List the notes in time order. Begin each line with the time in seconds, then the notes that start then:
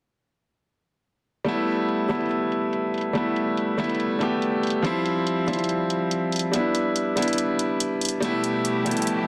1.44 G3 A3 B3, closed hi-hat
1.48 E4
1.68 closed hi-hat
1.89 closed hi-hat
2.09 G3 A3 B3 E4, closed hi-hat
2.15 closed hi-hat
2.21 closed hi-hat
2.26 closed hi-hat
2.31 closed hi-hat
2.52 closed hi-hat
2.73 closed hi-hat
2.94 closed hi-hat
2.98 closed hi-hat
3.01 closed hi-hat
3.13 G3 A3 B3, closed hi-hat
3.17 E4
3.36 closed hi-hat
3.57 closed hi-hat
3.78 G3 A3 B3 E4, closed hi-hat
3.84 closed hi-hat
3.89 closed hi-hat
3.95 closed hi-hat
4.00 closed hi-hat
4.19 G3 A3 B3, closed hi-hat
4.23 G4
4.42 closed hi-hat
4.63 closed hi-hat
4.67 closed hi-hat
4.70 closed hi-hat
4.82 F3 G3 C4, closed hi-hat
4.86 E4
5.06 closed hi-hat
5.27 closed hi-hat
5.47 F3 G3 C4 E4, closed hi-hat
5.53 closed hi-hat
5.59 closed hi-hat
5.64 closed hi-hat
5.69 closed hi-hat
5.90 closed hi-hat
6.11 closed hi-hat
6.32 closed hi-hat
6.36 closed hi-hat
6.39 closed hi-hat
6.52 G3 B3 D4 E4, closed hi-hat
6.75 closed hi-hat
6.96 closed hi-hat
7.16 G3 B3 D4 E4, closed hi-hat
7.22 closed hi-hat
7.28 closed hi-hat
7.33 closed hi-hat
7.38 closed hi-hat
7.59 closed hi-hat
7.80 closed hi-hat
8.01 closed hi-hat
8.05 closed hi-hat
8.09 closed hi-hat
8.20 B2 F3 G3 A3 B3 E4 G4, closed hi-hat
8.44 closed hi-hat
8.65 closed hi-hat
8.85 G3 A3 B3 E4, closed hi-hat
8.91 closed hi-hat
8.97 closed hi-hat
9.02 closed hi-hat
9.07 closed hi-hat